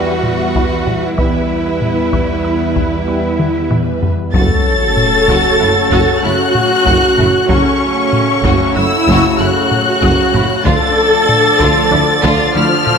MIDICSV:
0, 0, Header, 1, 13, 480
1, 0, Start_track
1, 0, Tempo, 631579
1, 901, Time_signature, 5, 2, 24, 8
1, 9865, End_track
2, 0, Start_track
2, 0, Title_t, "Violin section"
2, 0, Program_c, 0, 48
2, 0, Note_on_c, 0, 76, 69
2, 869, Note_off_c, 0, 76, 0
2, 895, Note_on_c, 0, 76, 54
2, 3115, Note_off_c, 0, 76, 0
2, 3290, Note_on_c, 0, 93, 112
2, 4705, Note_off_c, 0, 93, 0
2, 4735, Note_on_c, 0, 90, 101
2, 5692, Note_on_c, 0, 85, 98
2, 5698, Note_off_c, 0, 90, 0
2, 6637, Note_off_c, 0, 85, 0
2, 6654, Note_on_c, 0, 88, 111
2, 7128, Note_off_c, 0, 88, 0
2, 7138, Note_on_c, 0, 90, 90
2, 8096, Note_on_c, 0, 93, 125
2, 8099, Note_off_c, 0, 90, 0
2, 9509, Note_off_c, 0, 93, 0
2, 9540, Note_on_c, 0, 89, 121
2, 9865, Note_off_c, 0, 89, 0
2, 9865, End_track
3, 0, Start_track
3, 0, Title_t, "Viola section"
3, 0, Program_c, 1, 48
3, 0, Note_on_c, 1, 55, 60
3, 0, Note_on_c, 1, 71, 56
3, 870, Note_off_c, 1, 55, 0
3, 871, Note_off_c, 1, 71, 0
3, 896, Note_on_c, 1, 55, 44
3, 897, Note_on_c, 1, 71, 47
3, 3116, Note_off_c, 1, 55, 0
3, 3116, Note_off_c, 1, 71, 0
3, 3303, Note_on_c, 1, 69, 80
3, 4711, Note_off_c, 1, 69, 0
3, 4739, Note_on_c, 1, 66, 94
3, 5680, Note_off_c, 1, 66, 0
3, 5698, Note_on_c, 1, 61, 77
3, 6657, Note_on_c, 1, 64, 93
3, 6659, Note_off_c, 1, 61, 0
3, 7132, Note_on_c, 1, 66, 82
3, 7139, Note_off_c, 1, 64, 0
3, 8096, Note_off_c, 1, 66, 0
3, 8097, Note_on_c, 1, 69, 101
3, 9537, Note_on_c, 1, 53, 115
3, 9539, Note_off_c, 1, 69, 0
3, 9865, Note_off_c, 1, 53, 0
3, 9865, End_track
4, 0, Start_track
4, 0, Title_t, "Violin section"
4, 0, Program_c, 2, 48
4, 0, Note_on_c, 2, 78, 62
4, 898, Note_on_c, 2, 76, 47
4, 900, Note_off_c, 2, 78, 0
4, 2789, Note_off_c, 2, 76, 0
4, 3306, Note_on_c, 2, 73, 64
4, 3307, Note_on_c, 2, 66, 59
4, 3527, Note_off_c, 2, 66, 0
4, 4018, Note_on_c, 2, 66, 83
4, 4242, Note_off_c, 2, 66, 0
4, 4251, Note_on_c, 2, 64, 57
4, 4312, Note_off_c, 2, 64, 0
4, 4502, Note_on_c, 2, 66, 86
4, 4725, Note_off_c, 2, 66, 0
4, 4743, Note_on_c, 2, 64, 61
4, 4803, Note_off_c, 2, 64, 0
4, 5216, Note_on_c, 2, 66, 73
4, 5441, Note_off_c, 2, 66, 0
4, 5461, Note_on_c, 2, 64, 66
4, 5522, Note_off_c, 2, 64, 0
4, 5673, Note_off_c, 2, 73, 0
4, 5696, Note_on_c, 2, 66, 61
4, 5696, Note_on_c, 2, 73, 61
4, 5921, Note_off_c, 2, 66, 0
4, 6412, Note_on_c, 2, 66, 78
4, 6639, Note_off_c, 2, 66, 0
4, 6655, Note_on_c, 2, 64, 67
4, 6715, Note_off_c, 2, 64, 0
4, 6913, Note_on_c, 2, 66, 86
4, 7130, Note_off_c, 2, 66, 0
4, 7139, Note_on_c, 2, 64, 53
4, 7200, Note_off_c, 2, 64, 0
4, 7627, Note_on_c, 2, 66, 77
4, 7847, Note_off_c, 2, 66, 0
4, 7861, Note_on_c, 2, 64, 75
4, 7922, Note_off_c, 2, 64, 0
4, 8068, Note_off_c, 2, 73, 0
4, 8086, Note_on_c, 2, 74, 75
4, 8090, Note_on_c, 2, 65, 83
4, 8318, Note_off_c, 2, 65, 0
4, 8813, Note_on_c, 2, 65, 90
4, 9040, Note_off_c, 2, 65, 0
4, 9052, Note_on_c, 2, 64, 68
4, 9113, Note_off_c, 2, 64, 0
4, 9287, Note_on_c, 2, 65, 106
4, 9517, Note_off_c, 2, 65, 0
4, 9541, Note_on_c, 2, 64, 76
4, 9601, Note_off_c, 2, 64, 0
4, 9865, Note_off_c, 2, 74, 0
4, 9865, End_track
5, 0, Start_track
5, 0, Title_t, "French horn section"
5, 0, Program_c, 3, 60
5, 0, Note_on_c, 3, 59, 56
5, 0, Note_on_c, 3, 64, 54
5, 107, Note_off_c, 3, 59, 0
5, 109, Note_off_c, 3, 64, 0
5, 902, Note_on_c, 3, 59, 51
5, 905, Note_on_c, 3, 64, 52
5, 1069, Note_off_c, 3, 59, 0
5, 1071, Note_off_c, 3, 64, 0
5, 2345, Note_on_c, 3, 64, 45
5, 2346, Note_on_c, 3, 59, 50
5, 2511, Note_off_c, 3, 59, 0
5, 2511, Note_off_c, 3, 64, 0
5, 3294, Note_on_c, 3, 69, 92
5, 4707, Note_off_c, 3, 69, 0
5, 4735, Note_on_c, 3, 66, 92
5, 5698, Note_off_c, 3, 66, 0
5, 5699, Note_on_c, 3, 61, 93
5, 6641, Note_off_c, 3, 61, 0
5, 6645, Note_on_c, 3, 64, 86
5, 7133, Note_off_c, 3, 64, 0
5, 7135, Note_on_c, 3, 66, 82
5, 8098, Note_off_c, 3, 66, 0
5, 8102, Note_on_c, 3, 69, 105
5, 9403, Note_off_c, 3, 69, 0
5, 9533, Note_on_c, 3, 53, 112
5, 9865, Note_off_c, 3, 53, 0
5, 9865, End_track
6, 0, Start_track
6, 0, Title_t, "Analog synth pad"
6, 0, Program_c, 4, 89
6, 0, Note_on_c, 4, 55, 77
6, 0, Note_on_c, 4, 59, 80
6, 0, Note_on_c, 4, 64, 74
6, 0, Note_on_c, 4, 71, 78
6, 870, Note_off_c, 4, 71, 0
6, 877, Note_off_c, 4, 59, 0
6, 878, Note_off_c, 4, 64, 0
6, 880, Note_off_c, 4, 55, 0
6, 884, Note_on_c, 4, 71, 70
6, 887, Note_on_c, 4, 59, 72
6, 887, Note_on_c, 4, 64, 82
6, 889, Note_on_c, 4, 55, 79
6, 3262, Note_off_c, 4, 71, 0
6, 3263, Note_off_c, 4, 59, 0
6, 3263, Note_off_c, 4, 64, 0
6, 3264, Note_off_c, 4, 55, 0
6, 3292, Note_on_c, 4, 69, 95
6, 3294, Note_on_c, 4, 57, 77
6, 3295, Note_on_c, 4, 66, 90
6, 3299, Note_on_c, 4, 61, 87
6, 5666, Note_off_c, 4, 69, 0
6, 5667, Note_off_c, 4, 57, 0
6, 5668, Note_off_c, 4, 66, 0
6, 5669, Note_off_c, 4, 61, 0
6, 5699, Note_on_c, 4, 57, 91
6, 5699, Note_on_c, 4, 66, 94
6, 5700, Note_on_c, 4, 61, 85
6, 5701, Note_on_c, 4, 69, 83
6, 8069, Note_off_c, 4, 57, 0
6, 8069, Note_off_c, 4, 66, 0
6, 8070, Note_off_c, 4, 61, 0
6, 8070, Note_off_c, 4, 69, 0
6, 8090, Note_on_c, 4, 53, 85
6, 8092, Note_on_c, 4, 57, 83
6, 8094, Note_on_c, 4, 62, 97
6, 8094, Note_on_c, 4, 69, 90
6, 9865, Note_off_c, 4, 53, 0
6, 9865, Note_off_c, 4, 57, 0
6, 9865, Note_off_c, 4, 62, 0
6, 9865, Note_off_c, 4, 69, 0
6, 9865, End_track
7, 0, Start_track
7, 0, Title_t, "Synth arpeggio sound"
7, 0, Program_c, 5, 84
7, 0, Note_on_c, 5, 55, 52
7, 85, Note_off_c, 5, 55, 0
7, 426, Note_on_c, 5, 52, 87
7, 568, Note_off_c, 5, 52, 0
7, 660, Note_on_c, 5, 55, 58
7, 804, Note_off_c, 5, 55, 0
7, 896, Note_on_c, 5, 52, 81
7, 1042, Note_off_c, 5, 52, 0
7, 1619, Note_on_c, 5, 52, 88
7, 1763, Note_off_c, 5, 52, 0
7, 1858, Note_on_c, 5, 64, 64
7, 2003, Note_off_c, 5, 64, 0
7, 2098, Note_on_c, 5, 52, 80
7, 2243, Note_off_c, 5, 52, 0
7, 2341, Note_on_c, 5, 55, 60
7, 2485, Note_off_c, 5, 55, 0
7, 2817, Note_on_c, 5, 52, 89
7, 2962, Note_off_c, 5, 52, 0
7, 3060, Note_on_c, 5, 55, 57
7, 3204, Note_off_c, 5, 55, 0
7, 3302, Note_on_c, 5, 54, 88
7, 3445, Note_off_c, 5, 54, 0
7, 4018, Note_on_c, 5, 54, 103
7, 4163, Note_off_c, 5, 54, 0
7, 4255, Note_on_c, 5, 66, 72
7, 4401, Note_off_c, 5, 66, 0
7, 4498, Note_on_c, 5, 54, 112
7, 4643, Note_off_c, 5, 54, 0
7, 4732, Note_on_c, 5, 57, 67
7, 4879, Note_off_c, 5, 57, 0
7, 5211, Note_on_c, 5, 54, 92
7, 5358, Note_off_c, 5, 54, 0
7, 5455, Note_on_c, 5, 57, 75
7, 5600, Note_off_c, 5, 57, 0
7, 5694, Note_on_c, 5, 54, 96
7, 5840, Note_off_c, 5, 54, 0
7, 6412, Note_on_c, 5, 54, 96
7, 6559, Note_off_c, 5, 54, 0
7, 6657, Note_on_c, 5, 66, 82
7, 6802, Note_off_c, 5, 66, 0
7, 6897, Note_on_c, 5, 54, 105
7, 7042, Note_off_c, 5, 54, 0
7, 7141, Note_on_c, 5, 57, 69
7, 7285, Note_off_c, 5, 57, 0
7, 7617, Note_on_c, 5, 54, 117
7, 7762, Note_off_c, 5, 54, 0
7, 7857, Note_on_c, 5, 57, 83
7, 8002, Note_off_c, 5, 57, 0
7, 8095, Note_on_c, 5, 50, 106
7, 8241, Note_off_c, 5, 50, 0
7, 8814, Note_on_c, 5, 50, 107
7, 8960, Note_off_c, 5, 50, 0
7, 9056, Note_on_c, 5, 62, 81
7, 9201, Note_off_c, 5, 62, 0
7, 9302, Note_on_c, 5, 50, 97
7, 9446, Note_off_c, 5, 50, 0
7, 9542, Note_on_c, 5, 53, 78
7, 9685, Note_off_c, 5, 53, 0
7, 9865, End_track
8, 0, Start_track
8, 0, Title_t, "Trombone section"
8, 0, Program_c, 6, 61
8, 0, Note_on_c, 6, 52, 57
8, 0, Note_on_c, 6, 55, 56
8, 113, Note_off_c, 6, 52, 0
8, 115, Note_off_c, 6, 55, 0
8, 905, Note_on_c, 6, 55, 42
8, 906, Note_on_c, 6, 52, 44
8, 1071, Note_off_c, 6, 55, 0
8, 1072, Note_off_c, 6, 52, 0
8, 2337, Note_on_c, 6, 52, 48
8, 2338, Note_on_c, 6, 55, 46
8, 2506, Note_off_c, 6, 52, 0
8, 2506, Note_off_c, 6, 55, 0
8, 3293, Note_on_c, 6, 49, 59
8, 3293, Note_on_c, 6, 54, 65
8, 5666, Note_off_c, 6, 49, 0
8, 5666, Note_off_c, 6, 54, 0
8, 5699, Note_on_c, 6, 54, 71
8, 5702, Note_on_c, 6, 49, 69
8, 8069, Note_off_c, 6, 54, 0
8, 8071, Note_off_c, 6, 49, 0
8, 8092, Note_on_c, 6, 50, 70
8, 8097, Note_on_c, 6, 53, 74
8, 9865, Note_off_c, 6, 50, 0
8, 9865, Note_off_c, 6, 53, 0
8, 9865, End_track
9, 0, Start_track
9, 0, Title_t, "Cello section"
9, 0, Program_c, 7, 48
9, 0, Note_on_c, 7, 66, 72
9, 877, Note_off_c, 7, 66, 0
9, 898, Note_on_c, 7, 64, 55
9, 2789, Note_off_c, 7, 64, 0
9, 3299, Note_on_c, 7, 42, 83
9, 3360, Note_off_c, 7, 42, 0
9, 4018, Note_on_c, 7, 42, 74
9, 4078, Note_off_c, 7, 42, 0
9, 4262, Note_on_c, 7, 42, 55
9, 4322, Note_off_c, 7, 42, 0
9, 4496, Note_on_c, 7, 42, 77
9, 4557, Note_off_c, 7, 42, 0
9, 4735, Note_on_c, 7, 42, 62
9, 4796, Note_off_c, 7, 42, 0
9, 5209, Note_on_c, 7, 42, 88
9, 5270, Note_off_c, 7, 42, 0
9, 5457, Note_on_c, 7, 42, 57
9, 5517, Note_off_c, 7, 42, 0
9, 5694, Note_on_c, 7, 42, 82
9, 5754, Note_off_c, 7, 42, 0
9, 6417, Note_on_c, 7, 42, 74
9, 6478, Note_off_c, 7, 42, 0
9, 6654, Note_on_c, 7, 42, 65
9, 6714, Note_off_c, 7, 42, 0
9, 6896, Note_on_c, 7, 42, 95
9, 6957, Note_off_c, 7, 42, 0
9, 7136, Note_on_c, 7, 42, 61
9, 7197, Note_off_c, 7, 42, 0
9, 7610, Note_on_c, 7, 42, 91
9, 7671, Note_off_c, 7, 42, 0
9, 7849, Note_on_c, 7, 42, 68
9, 7909, Note_off_c, 7, 42, 0
9, 8097, Note_on_c, 7, 50, 86
9, 8158, Note_off_c, 7, 50, 0
9, 8816, Note_on_c, 7, 50, 84
9, 8877, Note_off_c, 7, 50, 0
9, 9052, Note_on_c, 7, 50, 76
9, 9112, Note_off_c, 7, 50, 0
9, 9294, Note_on_c, 7, 50, 100
9, 9355, Note_off_c, 7, 50, 0
9, 9532, Note_on_c, 7, 50, 74
9, 9593, Note_off_c, 7, 50, 0
9, 9865, End_track
10, 0, Start_track
10, 0, Title_t, "Double bass section"
10, 0, Program_c, 8, 48
10, 0, Note_on_c, 8, 40, 62
10, 872, Note_off_c, 8, 40, 0
10, 901, Note_on_c, 8, 40, 51
10, 3118, Note_off_c, 8, 40, 0
10, 3302, Note_on_c, 8, 30, 76
10, 3363, Note_off_c, 8, 30, 0
10, 4018, Note_on_c, 8, 30, 80
10, 4079, Note_off_c, 8, 30, 0
10, 4258, Note_on_c, 8, 30, 64
10, 4318, Note_off_c, 8, 30, 0
10, 4493, Note_on_c, 8, 30, 81
10, 4553, Note_off_c, 8, 30, 0
10, 4734, Note_on_c, 8, 30, 57
10, 4795, Note_off_c, 8, 30, 0
10, 5216, Note_on_c, 8, 30, 79
10, 5277, Note_off_c, 8, 30, 0
10, 5458, Note_on_c, 8, 30, 64
10, 5519, Note_off_c, 8, 30, 0
10, 5696, Note_on_c, 8, 30, 73
10, 5756, Note_off_c, 8, 30, 0
10, 6416, Note_on_c, 8, 30, 89
10, 6477, Note_off_c, 8, 30, 0
10, 6657, Note_on_c, 8, 30, 64
10, 6718, Note_off_c, 8, 30, 0
10, 6897, Note_on_c, 8, 30, 88
10, 6958, Note_off_c, 8, 30, 0
10, 7140, Note_on_c, 8, 30, 63
10, 7201, Note_off_c, 8, 30, 0
10, 7617, Note_on_c, 8, 30, 81
10, 7678, Note_off_c, 8, 30, 0
10, 7859, Note_on_c, 8, 30, 63
10, 7920, Note_off_c, 8, 30, 0
10, 8097, Note_on_c, 8, 38, 86
10, 8158, Note_off_c, 8, 38, 0
10, 8822, Note_on_c, 8, 38, 103
10, 8883, Note_off_c, 8, 38, 0
10, 9064, Note_on_c, 8, 38, 72
10, 9125, Note_off_c, 8, 38, 0
10, 9301, Note_on_c, 8, 38, 103
10, 9362, Note_off_c, 8, 38, 0
10, 9543, Note_on_c, 8, 38, 74
10, 9604, Note_off_c, 8, 38, 0
10, 9865, End_track
11, 0, Start_track
11, 0, Title_t, "Tuba"
11, 0, Program_c, 10, 58
11, 3298, Note_on_c, 10, 30, 73
11, 3395, Note_off_c, 10, 30, 0
11, 4014, Note_on_c, 10, 30, 81
11, 4112, Note_off_c, 10, 30, 0
11, 4260, Note_on_c, 10, 30, 58
11, 4356, Note_off_c, 10, 30, 0
11, 4494, Note_on_c, 10, 30, 80
11, 4591, Note_off_c, 10, 30, 0
11, 4736, Note_on_c, 10, 30, 59
11, 4833, Note_off_c, 10, 30, 0
11, 5216, Note_on_c, 10, 30, 89
11, 5313, Note_off_c, 10, 30, 0
11, 5454, Note_on_c, 10, 30, 60
11, 5551, Note_off_c, 10, 30, 0
11, 5697, Note_on_c, 10, 30, 74
11, 5793, Note_off_c, 10, 30, 0
11, 6412, Note_on_c, 10, 30, 91
11, 6510, Note_off_c, 10, 30, 0
11, 6658, Note_on_c, 10, 30, 61
11, 6754, Note_off_c, 10, 30, 0
11, 6892, Note_on_c, 10, 30, 102
11, 6990, Note_off_c, 10, 30, 0
11, 7130, Note_on_c, 10, 30, 56
11, 7228, Note_off_c, 10, 30, 0
11, 7615, Note_on_c, 10, 30, 96
11, 7712, Note_off_c, 10, 30, 0
11, 7854, Note_on_c, 10, 30, 62
11, 7951, Note_off_c, 10, 30, 0
11, 8087, Note_on_c, 10, 38, 94
11, 8186, Note_off_c, 10, 38, 0
11, 8813, Note_on_c, 10, 38, 101
11, 8911, Note_off_c, 10, 38, 0
11, 9057, Note_on_c, 10, 38, 61
11, 9153, Note_off_c, 10, 38, 0
11, 9297, Note_on_c, 10, 38, 100
11, 9394, Note_off_c, 10, 38, 0
11, 9538, Note_on_c, 10, 38, 71
11, 9634, Note_off_c, 10, 38, 0
11, 9865, End_track
12, 0, Start_track
12, 0, Title_t, "Sub drop"
12, 0, Program_c, 11, 103
12, 3300, Note_on_c, 11, 60, 85
12, 5700, Note_off_c, 11, 60, 0
12, 9865, End_track
13, 0, Start_track
13, 0, Title_t, "Taiko and cinematic ensemble drums"
13, 178, Note_on_c, 9, 45, 49
13, 254, Note_off_c, 9, 45, 0
13, 421, Note_on_c, 9, 41, 85
13, 497, Note_off_c, 9, 41, 0
13, 661, Note_on_c, 9, 45, 48
13, 737, Note_off_c, 9, 45, 0
13, 900, Note_on_c, 9, 41, 90
13, 976, Note_off_c, 9, 41, 0
13, 1379, Note_on_c, 9, 45, 55
13, 1455, Note_off_c, 9, 45, 0
13, 1618, Note_on_c, 9, 41, 71
13, 1694, Note_off_c, 9, 41, 0
13, 2098, Note_on_c, 9, 41, 62
13, 2174, Note_off_c, 9, 41, 0
13, 2579, Note_on_c, 9, 47, 78
13, 2655, Note_off_c, 9, 47, 0
13, 2818, Note_on_c, 9, 45, 85
13, 2894, Note_off_c, 9, 45, 0
13, 3060, Note_on_c, 9, 43, 90
13, 3136, Note_off_c, 9, 43, 0
13, 3297, Note_on_c, 9, 41, 98
13, 3373, Note_off_c, 9, 41, 0
13, 3777, Note_on_c, 9, 45, 61
13, 3853, Note_off_c, 9, 45, 0
13, 4014, Note_on_c, 9, 41, 78
13, 4090, Note_off_c, 9, 41, 0
13, 4499, Note_on_c, 9, 41, 78
13, 4575, Note_off_c, 9, 41, 0
13, 4976, Note_on_c, 9, 45, 50
13, 5052, Note_off_c, 9, 45, 0
13, 5217, Note_on_c, 9, 41, 95
13, 5293, Note_off_c, 9, 41, 0
13, 5458, Note_on_c, 9, 45, 52
13, 5534, Note_off_c, 9, 45, 0
13, 5695, Note_on_c, 9, 41, 90
13, 5771, Note_off_c, 9, 41, 0
13, 6177, Note_on_c, 9, 45, 64
13, 6253, Note_off_c, 9, 45, 0
13, 6419, Note_on_c, 9, 41, 81
13, 6495, Note_off_c, 9, 41, 0
13, 6898, Note_on_c, 9, 41, 77
13, 6974, Note_off_c, 9, 41, 0
13, 7382, Note_on_c, 9, 45, 52
13, 7458, Note_off_c, 9, 45, 0
13, 7620, Note_on_c, 9, 41, 90
13, 7696, Note_off_c, 9, 41, 0
13, 7861, Note_on_c, 9, 45, 55
13, 7937, Note_off_c, 9, 45, 0
13, 8103, Note_on_c, 9, 41, 97
13, 8179, Note_off_c, 9, 41, 0
13, 8580, Note_on_c, 9, 45, 68
13, 8656, Note_off_c, 9, 45, 0
13, 8817, Note_on_c, 9, 41, 86
13, 8893, Note_off_c, 9, 41, 0
13, 9297, Note_on_c, 9, 41, 75
13, 9373, Note_off_c, 9, 41, 0
13, 9779, Note_on_c, 9, 45, 56
13, 9855, Note_off_c, 9, 45, 0
13, 9865, End_track
0, 0, End_of_file